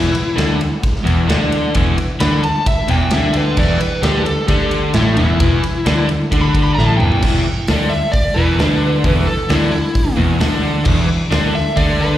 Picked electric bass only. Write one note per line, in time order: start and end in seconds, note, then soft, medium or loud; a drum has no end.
0.00 0.13 E1 loud
0.14 muted picked electric bass stroke soft
0.38 0.59 D2 loud
1.06 1.27 E1 medium
1.29 1.72 D2 loud
1.75 1.96 E1 medium
1.98 muted picked electric bass stroke soft
2.20 2.41 D2 loud
2.89 3.10 E1 medium
3.12 3.54 D2 medium
3.57 3.78 E1 loud
3.80 muted picked electric bass stroke soft
4.02 4.24 D2 loud
4.49 4.91 D2 loud
4.94 5.15 A1 loud
5.17 5.38 E1 medium
5.41 5.61 E1 loud
5.64 muted picked electric bass stroke soft
5.86 6.07 D2 loud
6.32 6.74 D2 loud
6.78 6.99 A1 loud
7.00 7.21 E1 loud
7.23 7.44 E1 loud
7.47 muted picked electric bass stroke soft
7.69 7.90 D2 loud
8.36 8.57 E1 medium
8.59 9.01 D2 medium
9.04 9.26 E1 medium
9.27 muted picked electric bass stroke soft
9.49 9.71 D2 loud
10.18 10.39 E1 medium
10.41 10.83 D2 medium
10.86 11.08 E1 loud
11.09 muted picked electric bass stroke soft
11.31 11.53 D2 loud
11.77 12.18 D2 medium